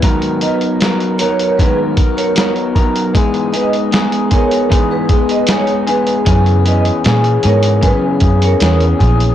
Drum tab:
HH |xxxxxxxxx-xxxxxx|xxxxxxxxx-xxxxxx|xxxxxxxxx-xxxxxx|
SD |----o-------o---|----o-------o---|----o-------o---|
BD |o-------o-o---o-|o-----o-o-o-----|o-------o-o---o-|